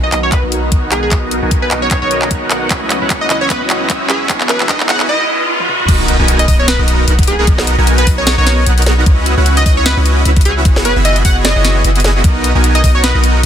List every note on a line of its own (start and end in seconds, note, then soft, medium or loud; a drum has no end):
0.00 0.11 B1 medium
0.00 2.67 D#3 medium
0.00 4.25 F#3 medium
0.00 0.10 B3 medium
0.00 5.05 B3 medium
0.00 0.10 D#4 medium
0.00 0.10 F#4 medium
0.00 2.67 F#4 medium
0.00 0.10 A#4 medium
0.00 2.67 A#4 medium
0.00 0.09 D#5 medium
0.00 0.10 G#5 medium
0.00 riser medium
0.12 0.41 B1 medium
0.12 0.40 B3 medium
0.12 0.40 D#4 medium
0.12 0.40 F#4 medium
0.12 0.40 A#4 medium
0.12 0.19 D#5 medium
0.12 0.40 D#5 medium
0.12 clap soft
0.12 closed hi-hat medium
0.23 0.30 C#5 medium
0.32 0.43 B4 medium
0.32 kick medium
0.32 clap medium
0.32 closed hi-hat medium
0.43 0.70 B1 medium
0.43 0.70 B3 medium
0.43 0.70 D#4 medium
0.43 0.70 F#4 medium
0.43 0.70 A#4 medium
0.43 0.70 D#5 medium
0.52 closed hi-hat medium
0.72 1.10 B1 loud
0.72 1.09 B3 loud
0.72 1.09 D#4 medium
0.72 1.09 F#4 medium
0.72 1.09 A#4 medium
0.72 kick medium
0.72 closed hi-hat medium
0.92 1.01 G#4 medium
0.92 clap medium
0.92 closed hi-hat medium
1.03 1.12 G#4 medium
1.11 1.40 B3 medium
1.11 1.40 D#4 medium
1.11 1.40 F#4 medium
1.11 1.40 D#5 medium
1.11 kick medium
1.11 clap medium
1.11 closed hi-hat medium
1.31 closed hi-hat medium
1.42 1.69 B1 loud
1.42 1.69 B3 medium
1.42 1.69 D#4 medium
1.42 1.69 F#4 medium
1.42 1.69 A#4 medium
1.42 1.69 G#5 loud
1.51 kick loud
1.51 closed hi-hat medium
1.62 1.71 B4 medium
1.71 2.00 B1 medium
1.71 1.99 B3 medium
1.71 1.99 D#4 medium
1.71 1.99 F#4 medium
1.71 1.99 A#4 medium
1.71 1.99 D#5 medium
1.71 clap medium
1.71 closed hi-hat medium
1.82 1.88 C#5 medium
1.91 1.98 C#5 medium
1.91 kick medium
1.91 clap medium
1.91 closed hi-hat medium
2.02 2.29 B1 loud
2.02 2.29 B3 medium
2.02 2.29 D#4 medium
2.02 2.29 F#4 medium
2.02 2.29 A#4 medium
2.02 2.31 C#5 medium
2.02 2.29 D#5 medium
2.11 closed hi-hat medium
2.22 clap medium
2.31 2.69 B1 loud
2.31 2.68 B3 loud
2.31 2.68 D#4 medium
2.31 2.68 F#4 medium
2.31 2.68 A#4 medium
2.31 2.68 F#5 loud
2.31 kick loud
2.31 closed hi-hat medium
2.51 clap medium
2.51 closed hi-hat medium
2.70 2.99 C#2 medium
2.70 4.28 E3 medium
2.70 2.99 C#4 medium
2.70 5.07 C#4 medium
2.70 2.99 E4 medium
2.70 4.28 E4 medium
2.70 2.99 F#4 medium
2.70 2.99 D#5 medium
2.70 kick loud
2.70 clap medium
2.70 closed hi-hat medium
2.90 clap medium
2.90 closed hi-hat medium
3.01 3.28 C#2 loud
3.01 3.28 C#4 medium
3.01 3.28 E4 medium
3.01 3.28 F#4 medium
3.01 3.28 B4 medium
3.01 3.28 F#5 loud
3.10 kick loud
3.10 clap medium
3.10 closed hi-hat medium
3.21 3.27 D#5 medium
3.30 3.59 C#2 medium
3.30 3.58 C#4 medium
3.30 3.58 E4 medium
3.30 3.58 F#4 medium
3.30 3.58 B4 medium
3.30 3.37 D#5 medium
3.30 3.58 D#5 loud
3.30 clap medium
3.30 closed hi-hat medium
3.41 3.48 C#5 medium
3.50 3.61 B4 medium
3.50 kick loud
3.50 clap medium
3.50 closed hi-hat medium
3.61 3.88 C#2 loud
3.61 3.88 C#4 medium
3.61 3.88 E4 medium
3.61 3.88 F#4 medium
3.61 3.88 B4 medium
3.61 3.88 D#5 medium
3.70 clap medium
3.70 closed hi-hat medium
3.90 4.28 C#2 loud
3.90 4.27 E4 medium
3.90 4.27 E5 loud
3.90 kick loud
3.90 clap medium
3.90 closed hi-hat medium
4.10 4.18 G#4 medium
4.10 clap medium
4.10 closed hi-hat medium
4.29 5.08 E3 medium
4.29 5.08 G#3 medium
4.29 4.58 B3 medium
4.29 4.58 E4 medium
4.29 4.58 F#4 medium
4.29 5.08 F#4 medium
4.29 kick loud
4.29 clap medium
4.29 closed hi-hat medium
4.41 clap medium
4.49 4.61 B4 medium
4.49 clap medium
4.49 closed hi-hat medium
4.60 4.87 F#1 loud
4.60 4.87 B3 medium
4.60 4.87 E4 medium
4.60 4.87 F#4 medium
4.60 4.87 G#4 medium
4.60 4.87 E5 loud
4.60 clap medium
4.69 4.80 D#5 medium
4.69 kick loud
4.69 clap loud
4.69 closed hi-hat medium
4.80 clap medium
4.89 5.09 F#1 loud
4.89 5.09 B3 medium
4.89 5.09 E4 medium
4.89 5.09 F#4 medium
4.89 5.09 G#4 medium
4.89 5.09 C#5 loud
4.89 5.00 F#5 loud
4.89 clap loud
4.89 closed hi-hat medium
5.00 clap medium
5.09 5.49 D#5 loud
5.60 high tom medium
5.69 mid tom medium
5.80 mid tom medium
5.88 6.17 B1 loud
5.88 6.17 B3 medium
5.88 6.17 D#4 medium
5.88 6.17 F#4 medium
5.88 6.17 A#4 medium
5.88 6.17 D#5 medium
5.88 kick loud
5.88 closed hi-hat medium
5.88 crash loud
5.88 impact medium
6.08 closed hi-hat medium
6.19 6.46 B1 loud
6.19 6.46 B3 medium
6.19 6.46 D#4 medium
6.19 6.46 F#4 medium
6.19 6.46 A#4 medium
6.19 6.46 G#5 loud
6.28 closed hi-hat medium
6.39 6.45 D#5 medium
6.39 closed hi-hat medium
6.48 6.77 B1 loud
6.48 6.76 B3 medium
6.48 6.76 D#4 medium
6.48 6.76 F#4 medium
6.48 6.76 A#4 medium
6.48 6.76 D#5 loud
6.48 6.55 D#5 medium
6.48 kick medium
6.48 open hi-hat medium
6.59 6.66 C#5 medium
6.68 6.79 B4 medium
6.68 snare loud
6.68 closed hi-hat medium
6.79 7.06 B1 medium
6.79 7.06 B3 medium
6.79 7.06 D#4 medium
6.79 7.06 F#4 medium
6.79 7.06 A#4 medium
6.79 7.06 D#5 medium
6.88 closed hi-hat medium
7.08 7.46 B1 loud
7.08 7.45 B3 loud
7.08 7.45 D#4 medium
7.08 7.45 F#4 medium
7.08 7.45 A#4 loud
7.08 7.45 F#5 loud
7.08 closed hi-hat medium
7.19 kick loud
7.19 closed hi-hat medium
7.23 closed hi-hat medium
7.28 7.36 G#4 medium
7.28 closed hi-hat medium
7.39 7.48 G#4 medium
7.47 7.76 B1 loud
7.47 7.76 B3 medium
7.47 7.76 D#4 medium
7.47 7.76 F#4 medium
7.47 kick loud
7.47 closed hi-hat medium
7.58 snare medium
7.67 closed hi-hat medium
7.78 8.05 B1 loud
7.78 8.05 B3 medium
7.78 8.05 D#4 medium
7.78 8.05 F#4 medium
7.78 8.05 A#4 medium
7.78 8.05 G#5 loud
7.87 closed hi-hat medium
7.98 8.07 B4 medium
7.98 closed hi-hat medium
8.07 8.36 B1 loud
8.07 8.35 B3 medium
8.07 8.35 D#4 medium
8.07 8.35 F#4 medium
8.07 8.35 D#5 loud
8.07 kick medium
8.07 open hi-hat medium
8.18 8.24 C#5 medium
8.27 8.34 C#5 medium
8.27 snare loud
8.27 snare medium
8.27 closed hi-hat medium
8.38 8.65 B1 loud
8.38 8.65 B3 medium
8.38 8.64 D#4 medium
8.38 8.65 F#4 medium
8.38 8.65 A#4 medium
8.38 8.67 C#5 loud
8.38 8.65 D#5 medium
8.47 snare medium
8.47 closed hi-hat medium
8.66 9.05 B1 loud
8.66 9.04 B3 loud
8.66 9.04 D#4 medium
8.66 9.04 F#4 medium
8.66 9.04 A#4 medium
8.66 9.04 F#5 loud
8.66 closed hi-hat medium
8.78 closed hi-hat soft
8.82 closed hi-hat medium
8.86 snare medium
8.86 closed hi-hat medium
9.06 9.35 C#2 loud
9.06 kick loud
9.06 closed hi-hat medium
9.26 closed hi-hat medium
9.37 9.64 C#2 loud
9.37 9.64 C#4 medium
9.37 9.64 E4 medium
9.37 9.64 F#4 medium
9.37 9.64 B4 medium
9.37 9.64 F#5 loud
9.46 closed hi-hat medium
9.57 9.63 D#5 medium
9.57 closed hi-hat medium
9.66 9.95 C#2 loud
9.66 9.94 C#4 medium
9.66 9.94 E4 medium
9.66 9.94 F#4 medium
9.66 9.94 B4 medium
9.66 9.94 D#5 loud
9.66 9.73 D#5 medium
9.66 kick medium
9.66 open hi-hat medium
9.77 9.84 C#5 medium
9.86 9.97 B4 medium
9.86 snare loud
9.86 closed hi-hat medium
9.97 10.24 C#2 loud
9.97 10.23 C#4 medium
9.97 10.23 E4 medium
9.97 10.23 F#4 medium
9.97 10.23 B4 medium
9.97 10.23 D#5 medium
10.06 closed hi-hat medium
10.25 10.67 C#2 loud
10.25 10.63 C#4 loud
10.25 10.63 E4 medium
10.25 10.63 F#4 medium
10.25 10.63 B4 medium
10.25 10.63 E5 loud
10.25 closed hi-hat medium
10.37 kick loud
10.37 closed hi-hat soft
10.41 closed hi-hat medium
10.45 10.54 G#4 medium
10.45 closed hi-hat medium
10.65 10.94 F#1 loud
10.65 10.94 B3 medium
10.65 10.94 E4 medium
10.65 kick loud
10.65 closed hi-hat medium
10.76 snare medium
10.85 10.96 B4 medium
10.85 closed hi-hat medium
10.96 11.23 F#1 loud
10.96 11.23 B3 medium
10.96 11.23 E4 medium
10.96 11.23 F#4 medium
10.96 11.23 G#4 medium
10.96 11.23 E5 loud
11.05 11.16 D#5 medium
11.05 closed hi-hat medium
11.16 closed hi-hat medium
11.25 11.54 F#1 loud
11.25 11.53 B3 medium
11.25 11.53 E4 medium
11.25 11.53 G#4 medium
11.25 11.53 C#5 loud
11.25 11.36 F#5 medium
11.25 kick medium
11.25 open hi-hat medium
11.45 11.84 D#5 loud
11.45 snare loud
11.45 snare medium
11.45 closed hi-hat medium
11.56 11.83 F#1 loud
11.56 11.82 B3 medium
11.56 11.82 E4 medium
11.56 11.82 F#4 medium
11.56 11.82 G#4 medium
11.56 11.82 C#5 medium
11.65 snare medium
11.65 closed hi-hat medium
11.84 12.22 F#1 loud
11.84 12.22 B3 loud
11.84 12.22 E4 medium
11.84 12.22 F#4 medium
11.84 12.22 G#4 medium
11.84 12.22 D#5 loud
11.84 closed hi-hat medium
11.96 closed hi-hat soft
12.00 closed hi-hat medium
12.04 snare medium
12.04 closed hi-hat medium
12.24 12.53 B1 medium
12.24 12.52 B3 medium
12.24 12.52 D#4 medium
12.24 12.52 F#4 medium
12.24 12.52 A#4 medium
12.24 12.52 D#5 medium
12.24 kick loud
12.24 closed hi-hat medium
12.44 closed hi-hat medium
12.55 12.82 B1 loud
12.55 12.82 B3 medium
12.55 12.82 D#4 medium
12.55 12.82 F#4 medium
12.55 12.82 A#4 medium
12.55 12.82 G#5 loud
12.64 closed hi-hat medium
12.75 12.81 D#5 medium
12.75 closed hi-hat medium
12.84 13.12 B1 loud
12.84 13.12 B3 medium
12.84 13.12 D#4 medium
12.84 13.12 F#4 medium
12.84 13.12 D#5 loud
12.84 12.91 D#5 medium
12.84 kick medium
12.84 open hi-hat medium
12.95 13.02 C#5 medium
13.04 13.15 B4 medium
13.04 snare loud
13.04 closed hi-hat medium
13.15 13.42 B1 loud
13.15 13.41 B3 medium
13.15 13.41 D#4 medium
13.15 13.41 F#4 medium
13.15 13.41 A#4 medium
13.15 13.41 D#5 medium
13.24 closed hi-hat medium